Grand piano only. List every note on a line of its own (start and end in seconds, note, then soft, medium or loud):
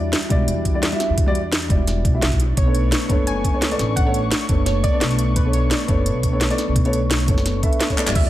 0.00 0.28 G3 medium
0.00 0.28 E4 medium
0.00 0.29 F#4 medium
0.00 0.29 D5 medium
0.29 0.72 G3 loud
0.29 0.72 E4 medium
0.29 0.73 F#4 medium
0.29 0.73 D5 loud
0.74 0.90 G3 medium
0.74 0.90 E4 medium
0.74 0.90 F#4 medium
0.74 0.90 D5 medium
0.91 1.24 G3 medium
0.91 1.25 E4 medium
0.91 1.25 F#4 medium
0.91 1.25 E5 loud
1.26 1.38 G3 loud
1.26 1.38 E4 medium
1.26 1.39 F#4 medium
1.26 1.39 D5 loud
1.69 2.11 G3 medium
1.69 2.12 E4 medium
1.69 2.12 F#4 medium
1.69 2.12 D5 medium
2.14 2.38 G3 medium
2.14 2.39 E4 medium
2.14 2.39 F#4 medium
2.14 2.39 E5 medium
2.65 3.07 B3 medium
2.65 3.07 D4 medium
2.65 3.08 A4 medium
2.65 3.08 C#5 medium
3.08 3.51 B3 loud
3.08 3.51 D4 medium
3.08 3.52 A4 medium
3.08 3.52 C#5 loud
3.53 3.69 B3 medium
3.53 3.69 D4 medium
3.53 3.69 A4 medium
3.53 3.69 C#5 medium
3.70 4.04 B3 medium
3.70 4.04 D4 medium
3.70 4.04 A4 medium
3.70 4.04 D5 medium
4.05 4.17 B3 medium
4.05 4.17 D4 medium
4.05 4.18 A4 medium
4.05 4.18 C#5 loud
4.48 4.91 B3 medium
4.48 4.91 D4 medium
4.48 4.91 A4 medium
4.48 4.92 C#5 medium
4.92 5.43 B3 medium
4.92 5.43 D4 medium
4.92 5.44 A4 medium
4.92 5.44 D5 medium
5.44 5.85 B3 medium
5.44 5.86 D4 medium
5.44 5.87 A4 medium
5.44 5.87 C#5 medium
5.87 6.30 B3 loud
5.87 6.30 D4 medium
5.87 6.31 A4 medium
5.87 6.31 C#5 loud
6.32 6.48 B3 medium
6.32 6.48 D4 medium
6.32 6.48 A4 medium
6.32 6.48 C#5 medium
6.49 6.83 B3 medium
6.49 6.83 D4 medium
6.49 6.83 A4 medium
6.49 6.83 D5 loud
6.85 6.96 B3 medium
6.85 6.97 D4 medium
6.85 6.97 A4 medium
6.85 6.97 C#5 loud
7.28 7.61 B3 medium
7.28 7.61 D4 medium
7.28 7.61 A4 medium
7.28 7.62 C#5 medium
7.62 7.87 B3 medium
7.62 7.87 D4 medium
7.62 7.88 A4 medium
7.62 7.88 E5 medium
7.89 7.96 B3 medium
7.89 7.96 D4 medium
7.89 7.96 A4 medium
7.89 7.97 C#5 medium
7.97 8.06 B3 medium
7.97 8.06 D4 medium
7.97 8.06 A4 medium
7.97 8.06 D5 medium
8.06 8.22 G3 medium
8.06 8.22 E4 medium
8.06 8.22 F#4 medium
8.06 8.23 D5 loud
8.23 8.30 G3 medium
8.23 8.30 E4 medium
8.23 8.30 F#4 medium
8.23 8.30 D5 medium